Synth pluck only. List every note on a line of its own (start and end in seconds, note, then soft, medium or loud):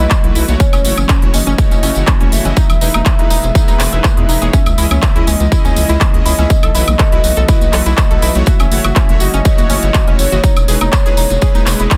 0.24 0.30 E4 medium
0.35 0.43 E4 loud
0.60 0.67 C#4 medium
0.73 0.79 C#4 loud
0.98 1.04 C#4 medium
1.09 1.16 C#4 loud
1.34 1.41 C#4 medium
1.47 1.53 C#4 loud
1.72 1.78 C#4 medium
1.83 1.90 C#4 loud
2.08 2.15 C#4 medium
2.21 2.27 C#4 loud
2.45 2.52 C#4 medium
2.57 2.64 D#4 loud
2.81 2.88 D#4 medium
2.94 3.01 D#4 loud
3.19 3.25 D#4 medium
3.31 3.38 D#4 loud
3.55 3.62 D#4 medium
3.68 3.74 D#4 loud
3.93 3.99 E5 medium
4.04 4.11 B4 medium
4.17 4.27 G#4 medium
4.29 4.40 D#4 medium
4.42 4.48 G#4 loud
4.54 4.61 C#4 loud
4.78 4.85 E4 loud
4.91 4.97 C#4 loud
5.16 5.22 E4 loud
5.27 5.34 C#4 loud
5.52 5.59 E4 loud
5.65 5.71 C#4 loud
5.89 5.96 E4 loud
6.01 6.08 C#4 loud
6.26 6.33 E4 loud
6.39 6.45 C#4 loud
6.63 6.69 A4 loud
6.75 6.82 E4 loud
6.99 7.06 A4 loud
7.12 7.19 E4 loud
7.37 7.43 A4 loud
7.49 7.56 E4 loud
7.73 7.80 A4 loud
7.86 7.92 E4 loud
8.11 8.17 A4 loud
8.22 8.29 E4 loud
8.47 8.54 F#4 loud
8.60 8.66 C#4 loud
8.85 8.91 F#4 loud
8.96 9.03 C#4 loud
9.21 9.28 F#4 loud
9.34 9.40 C#4 loud
9.58 9.65 F#4 loud
9.70 9.77 C#4 loud
9.95 10.02 F#4 loud
10.07 10.14 C#4 loud
10.32 10.38 F#4 loud
10.44 10.51 D#4 loud
10.68 10.75 G#4 loud
10.81 10.88 D#4 loud
11.06 11.12 G#4 loud
11.17 11.24 D#4 loud
11.42 11.49 G#4 loud
11.55 11.61 D#4 loud
11.80 11.86 E4 medium
11.91 11.95 D#4 medium